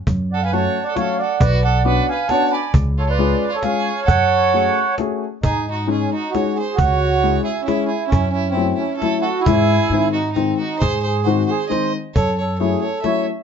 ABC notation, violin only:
X:1
M:3/4
L:1/16
Q:"Swing" 1/4=134
K:F#m
V:1 name="Violin"
z2 A B c3 A A2 A2 | F2 A2 B2 B2 c2 d2 | z2 ^E E4 E G4 | A8 z4 |
[K:G#phr] G2 F2 G2 F2 c2 ^B2 | c6 G2 E2 G2 | E2 E2 E2 E2 A2 A2 | G6 F2 D2 F2 |
^B2 B2 B2 B2 d2 z2 | c2 c2 c2 c2 e2 z2 |]